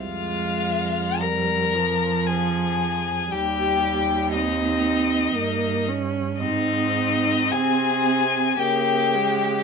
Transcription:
<<
  \new Staff \with { instrumentName = "Violin" } { \time 3/4 \key f \minor \tempo 4 = 57 f''4 bes''4 aes''4 | g''4 ees''4. r8 | ees''4 aes''4 g''4 | }
  \new Staff \with { instrumentName = "Violin" } { \time 3/4 \key f \minor f'4 bes'4 aes'4 | g'4 ees'4. r8 | ees'4 aes'4 g'4 | }
  \new Staff \with { instrumentName = "Viola" } { \time 3/4 \key f \minor aes4 g8 f4. | g4 c'4 bes8 des'8 | c'2 bes8 aes8 | }
  \new Staff \with { instrumentName = "Cello" } { \clef bass \time 3/4 \key f \minor f,2. | ees,2 g,4 | aes,4 c4 des4 | }
>>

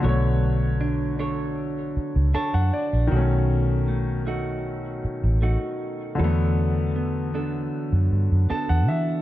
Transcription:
<<
  \new Staff \with { instrumentName = "Clean electric guitar" } { \time 4/4 \key b \minor \tempo 4 = 78 <b cis''>4 d'8 <d' a' cis''>4. <d' a' cis''>4 | <b, fis'>4 a8 <a dis' fis'>4. <a dis' fis'>4 | <e a'>4 b8 <b d' a'>4. <b d' a'>4 | }
  \new Staff \with { instrumentName = "Grand piano" } { \time 4/4 \key b \minor r2. a''16 fis''16 d''8 | r1 | r2. a''16 fis''16 e''8 | }
  \new Staff \with { instrumentName = "Grand piano" } { \clef bass \time 4/4 \key b \minor <d fis a cis''>1 | <dis fis a cis'>1 | <d fis a b>1 | }
  \new Staff \with { instrumentName = "Fingered electric bass" } { \clef bass \time 4/4 \key b \minor b,,2~ b,,8 r16 cis,16 r16 fis,16 r16 bes,,16 | b,,2~ b,,8 r16 a,,8 r8. | e,2 r16 fis,16 g,16 fis,16 r16 e,16 e8 | }
>>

